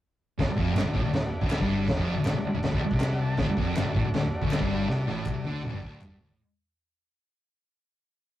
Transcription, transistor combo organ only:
0.39 3.34 F#4 medium
0.39 3.34 A4 medium
0.39 3.34 D5 medium
3.03 3.20 F#5 medium
3.22 3.38 A5 medium
3.37 6.33 F#4 medium
3.37 6.34 A4 medium
3.37 6.34 D5 medium

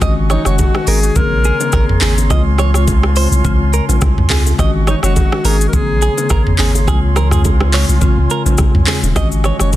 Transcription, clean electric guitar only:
0.02 0.13 D#5 medium
0.31 0.42 C#5 medium
0.46 0.55 C#5 medium
0.88 0.99 A#4 medium
1.45 1.56 G#4 medium
1.74 1.85 A#4 medium
2.02 2.13 G#4 medium
2.31 2.42 D#5 medium
2.59 2.70 C#5 medium
2.75 2.84 C#5 medium
3.17 3.27 C5 medium
3.74 3.84 A#4 medium
4.31 4.42 G#4 medium
4.60 4.70 D#5 medium
4.88 4.99 C#5 medium
5.04 5.13 C#5 medium
5.45 5.56 A#4 medium
6.02 6.13 G#4 medium
6.31 6.42 A#4 medium
6.60 6.70 G#4 medium
6.88 6.99 G#4 medium
7.17 7.28 A#4 medium
7.33 7.41 G#4 medium
7.74 7.85 C#5 medium
8.31 8.42 A#4 medium
8.88 8.99 G#4 medium
9.17 9.27 D#5 medium
9.45 9.56 C#5 medium
9.61 9.70 C#5 medium

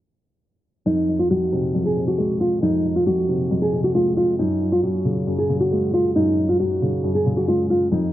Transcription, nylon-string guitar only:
0.86 1.17 D#4 loud
1.19 1.28 F4 medium
1.30 1.82 F#4 medium
1.86 2.02 G#4 medium
2.08 2.39 F#4 medium
2.41 2.57 F4 medium
2.63 2.94 D#4 medium
2.96 3.04 F4 medium
3.07 3.59 F#4 medium
3.62 3.79 G#4 medium
3.84 3.92 F#4 medium
3.95 4.12 F4 medium
4.17 4.34 F4 medium
4.39 4.70 D#4 loud
4.72 4.81 F4 medium
4.83 5.35 F#4 medium
5.39 5.55 G#4 medium
5.60 5.92 F#4 medium
5.94 6.10 F4 medium
6.16 6.47 D#4 loud
6.49 6.57 F4 medium
6.60 7.12 F#4 medium
7.15 7.32 G#4 medium
7.37 7.45 F#4 medium
7.48 7.65 F4 medium
7.70 7.87 F4 medium
7.92 8.13 D#4 loud

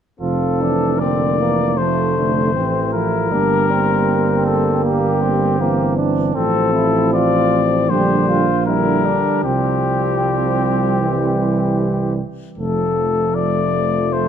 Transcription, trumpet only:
0.21 1.01 A4 soft
1.00 1.79 D5 medium
1.77 2.92 C5 soft
2.93 4.43 A#4 medium
4.45 4.83 A4 soft
4.84 5.95 G4 medium
6.35 7.09 A4 medium
7.14 7.91 D5 medium
7.90 8.66 C5 medium
8.66 9.43 A#4 medium
9.44 12.14 G4 medium
12.58 13.37 A4 soft
13.35 14.14 D5 medium
14.13 14.28 C5 soft

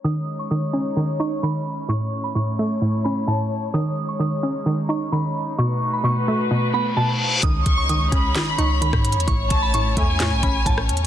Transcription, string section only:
0.05 1.87 G#3 medium
0.05 3.70 C#4 medium
0.05 1.87 D#4 medium
0.05 1.87 C#5 medium
1.89 3.72 A3 medium
1.89 3.72 E4 medium
1.89 5.55 C#5 medium
3.74 5.57 G#3 medium
3.74 5.57 C#4 medium
3.74 7.39 D#4 medium
5.58 7.41 A3 medium
5.58 7.41 F#4 medium
5.58 7.41 B4 medium
7.43 9.26 G#3 medium
7.43 9.26 C#4 medium
7.43 9.26 D#4 medium
7.43 11.07 C#5 medium
9.28 11.07 A3 medium
9.28 11.07 C#4 medium
9.28 11.07 E4 medium

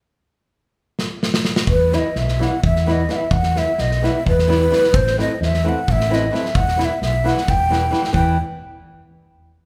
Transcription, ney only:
1.69 1.96 B4 medium
1.94 2.18 D#5 medium
1.94 1.99 E5 medium
2.17 2.45 E5 medium
2.43 2.64 F#5 medium
2.65 2.88 E5 medium
2.88 3.13 D#5 medium
2.88 2.93 E5 medium
3.12 3.17 F#5 medium
3.16 3.34 E5 medium
3.32 3.59 F#5 loud
3.58 3.81 E5 loud
3.80 4.07 D#5 medium
4.05 4.27 E5 medium
4.28 4.97 B4 loud
4.95 5.20 C5 loud
5.21 5.41 D#5 medium
5.43 5.70 E5 loud
5.69 5.93 F#5 medium
5.91 6.16 E5 loud
6.14 6.36 D#5 medium
6.34 6.57 E5 loud
6.56 6.81 F#5 loud
6.81 7.02 E5 loud
6.81 6.86 F#5 medium
7.03 7.29 E5 medium
7.27 7.51 F#5 medium
7.50 8.14 G5 loud
8.14 8.37 G5 medium

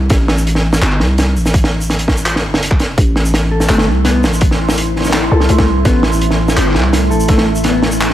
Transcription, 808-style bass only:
0.10 0.81 A1 loud
0.82 1.01 G1 medium
1.00 1.37 C2 medium
1.36 2.45 A1 medium
2.44 2.90 G1 medium
2.89 2.97 E1 medium
2.98 3.68 A1 loud
3.69 3.89 G1 medium
3.87 4.25 C2 medium
4.23 5.30 A1 medium
5.32 5.48 C2 loud
5.49 5.84 C2 medium
5.85 6.56 A1 loud
6.57 6.77 G1 medium
6.75 7.12 C2 loud
7.11 8.13 A1 loud

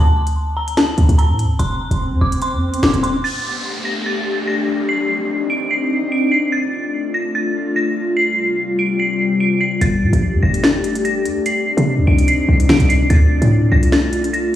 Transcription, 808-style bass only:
0.00 0.94 D2 loud
0.98 1.08 D2 loud
1.09 1.31 D2 loud
1.29 1.46 A2 loud
1.44 1.59 D2 loud
1.60 1.90 F1 loud
1.91 2.13 F1 loud
2.11 2.21 F2 loud
2.21 2.54 F1 loud
2.53 2.69 F2 loud
2.68 2.82 F1 medium
2.83 2.93 F1 loud
2.94 3.23 D#1 loud
9.81 10.03 G1 loud
10.02 10.12 A#2 loud
10.13 10.35 A#1 loud
10.33 10.43 G2 loud
10.43 11.27 G1 loud
11.25 11.38 G2 loud
11.36 11.45 G1 loud
11.77 11.99 C3 loud
11.98 12.07 D2 loud
12.07 12.27 C2 loud
12.49 12.68 C2 loud
12.69 12.80 C3 loud
12.80 13.09 C2 loud
13.10 13.40 D2 loud
13.42 13.71 A2 loud
13.72 14.56 C2 loud

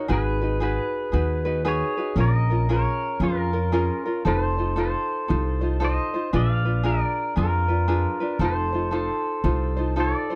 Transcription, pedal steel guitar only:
0.00 0.12 A#4 medium
0.12 0.60 G#4 medium
0.12 0.62 B4 medium
0.64 1.63 G#4 medium
0.64 1.68 B4 medium
1.68 2.15 G#4 medium
1.68 2.20 C#5 medium
2.20 2.68 A#4 medium
2.20 2.72 D#5 medium
2.72 3.19 A#4 medium
2.72 3.24 C#5 medium
3.24 4.23 F4 medium
3.24 4.22 A#4 medium
4.28 4.75 A4 medium
4.28 4.79 C5 medium
4.80 5.79 A4 medium
4.80 5.84 C5 medium
5.85 6.32 C5 medium
5.85 6.36 D#5 medium
6.36 6.83 D5 medium
6.36 6.88 F5 medium
6.86 7.34 A#4 medium
6.86 7.39 D5 medium
7.38 8.37 F4 medium
7.38 8.44 A#4 medium
8.44 8.91 A4 medium
8.44 8.94 C5 medium
8.95 9.94 A4 medium
8.95 9.99 C5 medium
10.00 10.35 A4 medium
10.00 10.35 D5 medium

